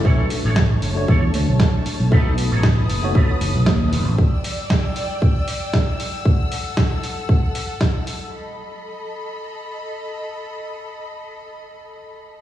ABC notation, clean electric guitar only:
X:1
M:4/4
L:1/16
Q:"Swing 16ths" 1/4=116
K:F#phr
V:1 name="Clean electric guitar"
[DAc]2 z [DAc] z4 [DAc] z6 z | [^DAB]2 z [DAc] z4 [DAB] z6 z | z16 | z16 |
z16 | z16 |]